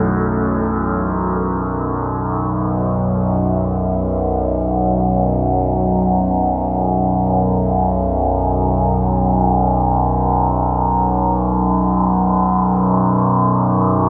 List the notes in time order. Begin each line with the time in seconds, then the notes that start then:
Already playing: B1 F#2 C#4 E4 F#4 A4
2.53 B1 F#2